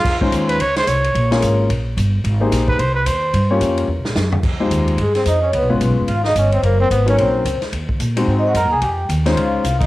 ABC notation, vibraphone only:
X:1
M:4/4
L:1/8
Q:"Swing" 1/4=219
K:Dblyd
V:1 name="Vibraphone"
z8 | z8 | z8 | z8 |
z4 A c e d | _c z3 f e d =c | B c _c d =c3 z | z4 (3c e _g b a |
g2 z2 f3 e |]